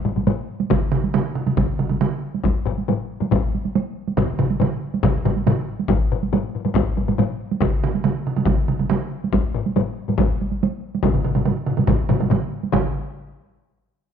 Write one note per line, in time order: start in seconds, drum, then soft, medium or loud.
0.05 taiko low-mid medium
0.05 taiko high soft
0.16 taiko low-mid medium
0.16 taiko high soft
0.27 taiko low-mid loud
0.27 taiko high medium
0.60 taiko high medium
0.70 taiko loud
0.70 taiko mid loud
0.70 taiko high medium
0.92 taiko mid loud
1.04 taiko high medium
1.14 taiko mid loud
1.14 taiko high medium
1.35 taiko mid medium
1.46 taiko mid medium
1.46 taiko high medium
1.57 taiko loud
1.57 taiko mid medium
1.57 taiko high medium
1.79 taiko mid medium
1.79 taiko high soft
1.89 taiko mid medium
1.89 taiko high medium
2.01 taiko mid loud
2.01 taiko high medium
2.34 taiko high soft
2.44 taiko medium
2.44 taiko high medium
2.66 taiko low-mid medium
2.78 taiko high soft
2.88 taiko low-mid medium
2.88 taiko high medium
3.20 taiko low-mid medium
3.20 taiko high medium
3.31 taiko loud
3.31 taiko low-mid loud
3.31 taiko high medium
3.55 taiko high soft
3.65 taiko high soft
3.75 taiko high medium
4.08 taiko high soft
4.17 taiko medium
4.17 taiko low-mid medium
4.17 taiko mid loud
4.17 taiko high medium
4.39 taiko low-mid medium
4.39 taiko mid loud
4.50 taiko high medium
4.60 taiko low-mid loud
4.60 taiko mid medium
4.60 taiko high medium
4.94 taiko high medium
5.03 taiko loud
5.03 taiko low-mid medium
5.03 taiko mid loud
5.03 taiko high medium
5.25 taiko low-mid loud
5.25 taiko mid medium
5.25 taiko high soft
5.37 taiko high soft
5.47 taiko low-mid loud
5.47 taiko mid loud
5.47 taiko high medium
5.79 taiko high soft
5.89 taiko loud
5.89 taiko low-mid medium
5.89 taiko high medium
6.12 taiko low-mid medium
6.23 taiko high soft
6.33 taiko low-mid loud
6.33 taiko high medium
6.55 taiko low-mid medium
6.65 taiko low-mid medium
6.65 taiko high medium
6.75 taiko loud
6.75 taiko low-mid medium
6.75 taiko high medium
6.97 taiko low-mid medium
6.97 taiko high soft
7.08 taiko low-mid medium
7.08 taiko high medium
7.18 taiko low-mid loud
7.18 taiko high medium
7.51 taiko high medium
7.61 taiko loud
7.61 taiko mid medium
7.61 taiko high medium
7.84 taiko mid loud
7.95 taiko high medium
8.04 taiko mid loud
8.04 taiko high medium
8.27 taiko mid medium
8.36 taiko mid medium
8.36 taiko high medium
8.46 taiko loud
8.46 taiko mid medium
8.46 taiko high medium
8.68 taiko mid medium
8.68 taiko high soft
8.79 taiko mid medium
8.79 taiko high soft
8.90 taiko mid loud
8.90 taiko high medium
9.24 taiko high medium
9.33 taiko medium
9.33 taiko high medium
9.54 taiko low-mid medium
9.66 taiko high medium
9.76 taiko low-mid loud
9.76 taiko high medium
10.08 taiko low-mid medium
10.08 taiko high medium
10.18 taiko loud
10.18 taiko low-mid medium
10.18 taiko high medium
10.41 taiko high soft
10.52 taiko high soft
10.63 taiko high medium
10.95 taiko high medium
11.03 taiko loud
11.03 taiko low-mid medium
11.03 taiko mid medium
11.03 taiko high medium
11.14 taiko low-mid medium
11.14 taiko mid medium
11.24 taiko low-mid medium
11.24 taiko mid medium
11.35 taiko low-mid medium
11.35 taiko mid medium
11.35 taiko high soft
11.45 taiko low-mid medium
11.45 taiko mid medium
11.45 taiko high medium
11.66 taiko low-mid medium
11.66 taiko mid medium
11.77 taiko low-mid medium
11.77 taiko mid medium
11.77 taiko high medium
11.87 taiko loud
11.87 taiko low-mid loud
11.87 taiko mid loud
11.87 taiko high medium
12.09 taiko low-mid loud
12.09 taiko mid medium
12.09 taiko high medium
12.20 taiko low-mid medium
12.20 taiko mid medium
12.20 taiko high medium
12.30 taiko low-mid loud
12.30 taiko mid loud
12.30 taiko high medium
12.63 taiko high soft
12.72 taiko medium
12.72 taiko low-mid loud
12.72 taiko mid loud
12.72 taiko high medium